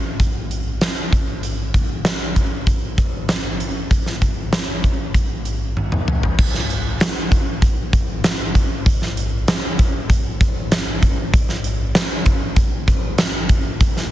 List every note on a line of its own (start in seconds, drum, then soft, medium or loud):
0.20 kick medium
0.20 closed hi-hat medium
0.51 closed hi-hat medium
0.81 snare medium
0.81 closed hi-hat medium
1.13 kick medium
1.13 closed hi-hat medium
1.43 closed hi-hat medium
1.74 kick medium
1.74 closed hi-hat medium
2.05 snare loud
2.05 closed hi-hat medium
2.36 kick medium
2.36 closed hi-hat medium
2.67 kick medium
2.67 closed hi-hat medium
2.98 kick medium
2.98 closed hi-hat medium
3.29 snare medium
3.29 closed hi-hat medium
3.60 closed hi-hat medium
3.91 kick medium
3.91 closed hi-hat medium
4.06 snare soft
4.22 kick medium
4.22 closed hi-hat medium
4.53 snare loud
4.53 closed hi-hat medium
4.84 kick medium
4.84 closed hi-hat medium
5.14 kick medium
5.14 closed hi-hat medium
5.45 closed hi-hat medium
5.77 high tom soft
5.92 mid tom medium
6.08 mid tom medium
6.23 floor tom medium
6.39 kick loud
6.39 crash loud
6.54 snare soft
6.70 closed hi-hat medium
7.00 snare loud
7.00 closed hi-hat medium
7.00 tambourine medium
7.32 kick medium
7.32 closed hi-hat medium
7.62 kick loud
7.62 closed hi-hat medium
7.93 kick medium
7.93 closed hi-hat medium
8.24 snare loud
8.24 closed hi-hat medium
8.24 tambourine medium
8.55 kick medium
8.55 closed hi-hat medium
8.86 kick loud
8.86 closed hi-hat medium
9.02 snare soft
9.17 closed hi-hat medium
9.48 snare loud
9.48 closed hi-hat medium
9.48 tambourine medium
9.79 kick loud
9.79 closed hi-hat medium
10.10 kick medium
10.10 closed hi-hat medium
10.41 kick loud
10.41 closed hi-hat medium
10.72 snare loud
10.72 closed hi-hat medium
10.72 tambourine medium
11.03 kick medium
11.03 closed hi-hat medium
11.34 kick loud
11.34 closed hi-hat medium
11.49 snare soft
11.64 closed hi-hat medium
11.95 snare loud
11.95 closed hi-hat medium
11.95 tambourine loud
12.26 kick medium
12.26 closed hi-hat medium
12.56 kick loud
12.56 closed hi-hat medium
12.88 kick medium
12.88 closed hi-hat medium
13.18 snare loud
13.18 closed hi-hat medium
13.18 tambourine medium
13.49 kick medium
13.49 closed hi-hat medium
13.81 kick loud
13.81 closed hi-hat medium
13.97 snare soft